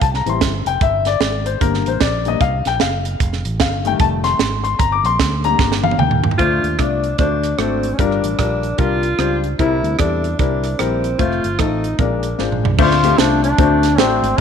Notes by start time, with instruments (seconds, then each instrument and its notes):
0.01 fingered electric bass C2, grand piano A5, kick, closed hi-hat
0.14 grand piano A#5, snare
0.26 fingered electric bass A1, grand piano E3 G3 C4 C6, closed hi-hat
0.41 fingered electric bass G1, kick, snare, closed hi-hat
0.66 fingered electric bass F1, grand piano G5, closed hi-hat
0.81 fingered electric bass G1, grand piano E5, kick, closed hi-hat
1.05 grand piano D5, snare, closed hi-hat
1.20 fingered electric bass G#1, snare, closed hi-hat
1.46 grand piano C5, closed hi-hat
1.60 fingered electric bass G1, grand piano D3 G3 A#3 A#4, kick, closed hi-hat
1.74 snare
1.86 fingered electric bass A1, grand piano C5, closed hi-hat
2.00 fingered electric bass A#1, grand piano D5, kick, snare, closed hi-hat
2.25 grand piano D3 G3 A#3 D#5, closed hi-hat
2.41 fingered electric bass C2, grand piano F5, kick, closed hi-hat
2.65 fingered electric bass A#1, grand piano G5, snare, closed hi-hat
2.80 fingered electric bass F#1, grand piano F5, snare, closed hi-hat
3.05 closed hi-hat
3.20 fingered electric bass F1, kick, closed hi-hat
3.33 snare
3.45 fingered electric bass A1, closed hi-hat
3.60 fingered electric bass G1, grand piano F5, kick, snare, closed hi-hat
3.85 grand piano D#3 G3 A3 G5, closed hi-hat
4.00 fingered electric bass F1, grand piano A5, kick, closed hi-hat
4.24 grand piano C6, snare, closed hi-hat
4.39 fingered electric bass G#1, snare, closed hi-hat
4.64 grand piano C6, closed hi-hat
4.79 fingered electric bass G1, grand piano A#5, kick, closed hi-hat
4.92 grand piano D6
5.04 fingered electric bass A#1, grand piano C6, closed hi-hat
5.19 fingered electric bass D2, kick, snare, closed hi-hat
5.44 grand piano D3 G3 A#3 A#5, closed hi-hat
5.59 fingered electric bass G1, kick, snare
5.72 snare
5.83 grand piano F5, high tom
5.91 high tom
5.98 fingered electric bass D#2, grand piano G5, mid tom
6.11 mid tom
6.24 floor tom
6.31 floor tom
6.38 fingered electric bass D2, grand piano D3 A3 D4 F4 C5, alto saxophone F4, kick, closed hi-hat
6.63 fingered electric bass D#2, closed hi-hat
6.78 fingered electric bass C2, grand piano A3 D4 F4 D5, alto saxophone D4, kick, cross-stick, closed hi-hat
7.04 closed hi-hat
7.18 fingered electric bass D2, grand piano D3 A3 D4 F#4 C5, alto saxophone D4, kick, closed hi-hat
7.43 cross-stick, closed hi-hat
7.58 fingered electric bass G#1, grand piano A3 D4 F#4 A4, alto saxophone C4, cross-stick, closed hi-hat
7.83 closed hi-hat
7.93 alto saxophone C#4
7.99 fingered electric bass G1, grand piano G2 G3 D4 F4 A#4, alto saxophone D4, kick, closed hi-hat
8.11 cross-stick
8.24 fingered electric bass A1, closed hi-hat
8.39 fingered electric bass A#1, grand piano G3 D4 F4 A#4, alto saxophone D4, kick, cross-stick, closed hi-hat
8.63 closed hi-hat
8.78 fingered electric bass C2, grand piano G3 D4 F4 A#4, alto saxophone F4, kick, closed hi-hat
9.03 closed hi-hat
9.18 fingered electric bass C#2, grand piano G3 D4 F4 C5, cross-stick, closed hi-hat
9.44 closed hi-hat
9.59 fingered electric bass C2, grand piano C3 G3 C4 E4 A#4, alto saxophone E4, kick, closed hi-hat
9.83 fingered electric bass D2, closed hi-hat
9.99 fingered electric bass E2, grand piano G3 C4 E4 A4, alto saxophone D4, kick, cross-stick, closed hi-hat
10.24 closed hi-hat
10.39 fingered electric bass C2, grand piano G3 C4 E4 A#4, alto saxophone D4, kick, closed hi-hat
10.64 cross-stick, closed hi-hat
10.79 fingered electric bass A#1, grand piano G3 C4 E4 A#4, alto saxophone C4, cross-stick, closed hi-hat
11.04 closed hi-hat
11.19 fingered electric bass F1, grand piano A3 C4 F4 C5, alto saxophone F4, kick, closed hi-hat
11.32 cross-stick
11.44 fingered electric bass G1, closed hi-hat
11.59 fingered electric bass A1, grand piano A3 C4 F4 A4, alto saxophone D#4, kick, cross-stick, closed hi-hat
11.84 closed hi-hat
11.99 fingered electric bass A#1, grand piano A#2 G#3 D4 F4 A#4, alto saxophone D4, kick, closed hi-hat
12.23 closed hi-hat
12.38 fingered electric bass G#1, grand piano G#3 D4 F4 C5, snare
12.52 mid tom
12.63 fingered electric bass C2, floor tom
12.78 fingered electric bass D2, grand piano D3 A3 C4 D4 F4 C5, duduk F4, kick, crash
12.91 snare
13.03 grand piano A3 C4 D4 F4 G4, closed hi-hat
13.18 fingered electric bass C2, grand piano A3 C4 D4 F4 C5, duduk D4, snare, closed hi-hat
13.43 duduk D4, closed hi-hat
13.58 fingered electric bass D2, grand piano D3 A3 C4 D4 F#4 C5, kick, closed hi-hat
13.83 snare, closed hi-hat
13.98 fingered electric bass A1, grand piano A3 C4 D4 F#4 C5, duduk C4, snare, closed hi-hat
14.22 fingered electric bass G#1, closed hi-hat